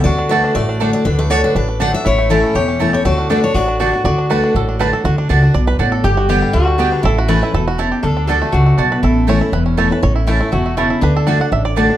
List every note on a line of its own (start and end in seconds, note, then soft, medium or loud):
0.04 0.42 D2 loud
0.04 0.29 D3 medium
0.04 0.17 D4 medium
0.04 2.01 F#4 loud
0.04 0.30 D5 loud
0.19 0.43 D4 medium
0.29 0.54 D3 medium
0.29 0.40 A3 medium
0.29 0.55 A3 medium
0.29 0.55 D4 medium
0.29 0.40 F#4 medium
0.29 0.55 F#4 loud
0.29 0.56 B4 medium
0.29 0.40 D5 medium
0.29 0.41 A5 loud
0.44 0.68 D4 medium
0.55 0.92 A1 medium
0.55 1.04 A2 medium
0.55 1.19 A3 medium
0.55 0.92 D5 loud
0.69 0.80 D4 medium
0.80 1.04 D3 medium
0.80 0.90 A3 medium
0.80 1.05 A3 loud
0.80 0.93 D4 medium
0.80 1.05 D4 medium
0.80 0.90 F#4 medium
0.80 1.05 F#4 medium
0.80 0.90 D5 medium
0.80 0.90 A5 medium
0.93 1.05 D4 medium
0.93 1.06 D5 medium
1.05 1.42 D2 medium
1.05 1.29 D3 medium
1.05 1.29 D4 medium
1.05 1.17 B4 medium
1.19 2.18 A3 medium
1.19 1.30 B4 medium
1.30 1.54 D3 loud
1.30 1.40 A3 medium
1.30 1.54 A3 medium
1.30 1.43 D4 medium
1.30 1.54 D4 loud
1.30 1.40 F#4 loud
1.30 1.55 F#4 loud
1.30 1.44 C#5 loud
1.30 1.40 D5 medium
1.30 1.40 A5 loud
1.44 1.54 D4 medium
1.44 1.55 B4 medium
1.55 1.92 A1 medium
1.55 2.03 A2 medium
1.55 1.67 D4 medium
1.55 1.79 B4 medium
1.69 1.79 D4 medium
1.80 1.93 D3 medium
1.80 1.90 A3 medium
1.80 1.93 A3 loud
1.80 1.92 D4 medium
1.80 1.93 D4 loud
1.80 1.90 F#4 loud
1.80 1.93 F#4 medium
1.80 1.90 D5 loud
1.80 1.94 F#5 loud
1.80 1.90 A5 medium
1.93 2.04 D4 medium
1.93 2.06 D4 soft
1.93 2.05 F#4 medium
1.93 2.05 E5 loud
2.05 2.42 A1 medium
2.05 2.53 A2 medium
2.05 2.30 E4 medium
2.05 2.30 E4 loud
2.05 2.32 C#5 loud
2.18 2.58 A3 medium
2.29 2.54 E3 medium
2.29 2.40 A3 medium
2.29 2.54 A3 loud
2.29 2.54 C#4 loud
2.29 2.40 E4 loud
2.29 2.66 E4 medium
2.29 3.08 E4 medium
2.29 2.55 E4 loud
2.29 2.54 A4 medium
2.29 2.40 C#5 medium
2.29 2.40 A5 medium
2.44 2.67 C#4 medium
2.55 2.92 E1 medium
2.55 3.03 E2 medium
2.55 2.91 G4 medium
2.55 2.91 C#5 medium
2.68 3.03 C#4 medium
2.79 2.93 E3 medium
2.79 2.89 A3 medium
2.79 2.93 A3 medium
2.79 2.93 C#4 medium
2.79 2.90 E4 medium
2.79 3.05 E4 medium
2.79 2.92 E4 loud
2.79 2.90 C#5 medium
2.79 2.90 A5 loud
2.93 3.05 C#4 medium
2.93 3.04 E4 medium
2.93 3.05 G4 medium
2.93 3.05 C#5 medium
3.05 3.41 D2 loud
3.05 3.29 D3 medium
3.05 3.41 A3 medium
3.05 3.28 F#4 medium
3.05 3.28 D5 medium
3.18 3.29 D4 medium
3.30 3.43 D3 medium
3.30 3.39 A3 medium
3.30 3.43 A3 medium
3.30 3.54 D4 medium
3.30 3.42 D4 medium
3.30 3.44 D4 medium
3.30 3.40 F#4 medium
3.30 3.43 F#4 loud
3.30 3.44 B4 medium
3.30 3.40 D5 loud
3.30 3.40 A5 loud
3.44 3.54 D4 medium
3.44 3.56 D4 soft
3.44 3.55 F#4 medium
3.44 3.55 C#5 medium
3.54 3.91 A1 medium
3.54 4.03 A2 medium
3.54 3.67 D4 medium
3.54 3.79 F#4 loud
3.54 3.93 D5 medium
3.68 3.79 D4 medium
3.79 3.93 D3 medium
3.79 3.89 A3 medium
3.79 3.93 A3 medium
3.79 3.92 D4 medium
3.79 3.93 D4 loud
3.79 3.89 F#4 medium
3.79 4.03 F#4 medium
3.79 3.92 F#4 medium
3.79 3.90 D5 loud
3.79 3.90 A5 medium
3.93 4.05 D4 medium
3.93 4.05 D4 soft
3.93 4.05 F#4 medium
4.04 4.41 D2 medium
4.04 4.29 D3 medium
4.04 6.00 F#4 medium
4.04 4.30 D5 loud
4.18 4.43 D4 medium
4.30 4.54 D3 medium
4.30 4.39 A3 medium
4.30 4.54 A3 medium
4.30 4.54 D4 medium
4.30 4.39 F#4 medium
4.30 4.55 F#4 medium
4.30 4.56 B4 medium
4.30 4.40 D5 medium
4.30 4.40 A5 medium
4.44 4.69 D4 medium
4.55 4.91 A1 medium
4.55 5.03 A2 medium
4.55 4.81 A4 medium
4.69 5.18 D4 medium
4.79 4.92 D3 medium
4.79 4.89 A3 loud
4.79 4.93 A3 medium
4.79 4.93 D4 loud
4.79 4.89 F#4 medium
4.79 4.92 F#4 medium
4.79 4.93 B4 loud
4.79 4.89 D5 medium
4.79 4.90 A5 loud
4.93 5.05 D4 medium
4.93 5.04 F#4 medium
4.93 5.05 A4 medium
5.04 5.23 D2 medium
5.04 5.28 D3 medium
5.04 5.18 F#4 loud
5.18 5.29 D4 medium
5.29 5.51 C#2 medium
5.29 5.42 D3 medium
5.29 5.39 A3 medium
5.29 5.42 A3 medium
5.29 5.41 D4 medium
5.29 5.43 D4 loud
5.29 5.39 F#4 medium
5.29 5.42 F#4 loud
5.29 5.39 D5 medium
5.29 5.39 A5 loud
5.43 5.77 D4 medium
5.43 5.55 D4 soft
5.43 5.54 F#4 medium
5.54 5.76 B1 medium
5.54 5.78 B2 medium
5.54 5.67 D5 loud
5.67 5.79 B4 loud
5.79 6.00 A1 medium
5.79 6.03 A2 medium
5.79 5.89 A3 medium
5.79 6.04 D4 medium
5.79 5.89 F#4 medium
5.79 5.89 D5 loud
5.79 5.89 A5 loud
5.92 6.04 A4 medium
6.04 6.41 G1 medium
6.04 6.52 G2 medium
6.04 6.53 G4 loud
6.04 6.18 G4 loud
6.17 6.29 F#4 medium
6.29 6.52 D3 medium
6.29 6.53 G3 medium
6.29 6.39 B3 medium
6.29 6.53 B3 loud
6.29 6.39 G4 medium
6.29 6.53 G4 medium
6.29 6.54 G4 loud
6.29 6.39 D5 medium
6.29 6.39 G5 loud
6.42 6.66 G3 medium
6.53 6.91 D2 medium
6.53 6.77 D3 medium
6.53 6.90 D4 medium
6.53 7.05 F#4 loud
6.67 7.02 G3 medium
6.78 7.02 D3 medium
6.78 7.03 G3 medium
6.78 6.88 B3 medium
6.78 7.04 B3 medium
6.78 7.03 B3 loud
6.78 6.89 G4 medium
6.78 7.03 G4 medium
6.78 6.89 D5 medium
6.78 6.89 G5 medium
6.92 7.04 D4 medium
7.03 7.40 A1 medium
7.03 7.51 A2 medium
7.03 7.29 E4 medium
7.03 7.18 A4 loud
7.18 7.41 F#4 loud
7.28 7.41 E3 loud
7.28 7.38 A3 medium
7.28 7.95 A3 medium
7.28 7.42 A3 medium
7.28 7.42 C#4 loud
7.28 7.38 E4 medium
7.28 7.41 E4 loud
7.28 7.88 B4 loud
7.28 7.38 C#5 medium
7.28 7.39 A5 medium
7.42 7.54 C#4 soft
7.42 7.53 E4 medium
7.42 7.54 E4 medium
7.54 7.90 E1 medium
7.54 7.78 B2 medium
7.54 7.67 A4 medium
7.68 7.79 F#4 medium
7.78 8.03 C#3 medium
7.78 7.88 A3 medium
7.78 7.88 E4 medium
7.78 8.02 E4 medium
7.78 7.88 C#5 medium
7.78 7.88 A5 loud
7.92 8.04 G4 medium
8.03 8.40 D2 loud
8.03 8.28 D3 medium
8.03 8.16 D4 medium
8.03 8.26 A4 loud
8.17 8.27 D4 medium
8.27 8.41 D3 loud
8.27 8.38 A3 medium
8.27 8.42 A3 loud
8.27 8.52 D4 medium
8.27 8.42 D4 medium
8.27 8.38 F#4 medium
8.27 8.41 F#4 medium
8.27 8.54 A4 medium
8.27 8.38 D5 medium
8.27 8.38 A5 loud
8.42 8.66 A3 medium
8.42 8.54 D4 soft
8.42 8.53 F#4 medium
8.52 8.74 C#2 medium
8.52 8.78 C#3 medium
8.52 8.76 D4 medium
8.52 9.02 F#4 loud
8.66 9.56 A3 medium
8.78 8.99 B1 medium
8.78 9.02 B2 medium
8.78 8.88 A3 medium
8.78 9.03 D4 medium
8.78 8.88 F#4 medium
8.78 8.88 D5 medium
8.78 8.88 A5 medium
8.92 9.04 B4 medium
9.03 9.40 A1 loud
9.03 9.51 A2 medium
9.03 10.23 E4 medium
9.03 9.29 A4 medium
9.27 9.41 E3 loud
9.27 9.37 A3 medium
9.27 9.41 A3 loud
9.27 9.41 C#4 loud
9.27 9.37 E4 medium
9.27 9.40 E4 medium
9.27 9.38 C#5 medium
9.27 9.41 C#5 loud
9.27 9.38 A5 loud
9.41 9.53 C#4 soft
9.41 9.52 E4 medium
9.41 9.76 E4 medium
9.52 9.89 E1 medium
9.52 10.00 E2 medium
9.52 9.65 B4 medium
9.66 10.00 C#4 medium
9.77 9.90 E3 medium
9.77 9.87 A3 loud
9.77 9.91 A3 medium
9.77 9.91 C#4 medium
9.77 9.87 E4 medium
9.77 9.90 E4 medium
9.77 9.92 A4 medium
9.77 9.88 C#5 loud
9.77 9.88 A5 medium
9.91 10.03 C#4 soft
9.91 10.02 E4 medium
9.91 10.03 B4 medium
10.03 10.39 A1 loud
10.03 10.50 A2 loud
10.03 10.15 C#5 loud
10.16 10.50 E4 medium
10.27 10.40 E3 loud
10.27 10.37 A3 medium
10.27 10.40 A3 loud
10.27 10.63 C#4 medium
10.27 10.40 C#4 loud
10.27 10.53 E4 medium
10.27 10.37 E4 medium
10.27 10.39 E4 loud
10.27 10.37 C#5 medium
10.27 10.38 A5 medium
10.40 10.65 A3 medium
10.40 10.52 C#4 soft
10.40 10.52 E4 medium
10.52 10.89 E1 medium
10.52 10.76 B2 medium
10.52 10.88 E4 medium
10.52 10.77 F#4 medium
10.66 11.00 A3 medium
10.77 11.01 C#3 medium
10.77 10.87 A3 medium
10.77 11.02 C#4 medium
10.77 11.00 E4 medium
10.77 10.87 E4 loud
10.77 10.87 C#5 medium
10.77 10.87 A5 medium
10.90 11.02 E4 medium
11.01 11.39 D2 loud
11.01 11.26 D3 medium
11.01 11.86 D4 medium
11.01 11.16 B4 loud
11.16 11.41 A4 medium
11.27 11.40 D3 medium
11.27 11.37 A3 medium
11.27 11.40 A3 medium
11.27 11.62 D4 medium
11.27 11.40 D4 loud
11.27 11.37 F#4 loud
11.27 11.39 F#4 loud
11.27 11.37 D5 medium
11.27 11.37 A5 medium
11.40 11.52 D4 soft
11.40 11.51 F#4 medium
11.40 11.52 F#5 medium
11.52 11.88 A1 medium
11.52 11.97 A2 medium
11.52 11.65 E5 loud
11.65 11.89 D5 medium
11.76 11.89 D3 medium
11.76 11.86 A3 medium
11.76 11.90 A3 loud
11.76 11.88 D4 medium
11.76 11.90 D4 medium
11.76 11.86 F#4 medium
11.76 11.89 F#4 medium
11.76 11.87 D5 loud
11.76 11.87 A5 loud
11.90 11.97 D4 medium
11.90 11.97 F#4 medium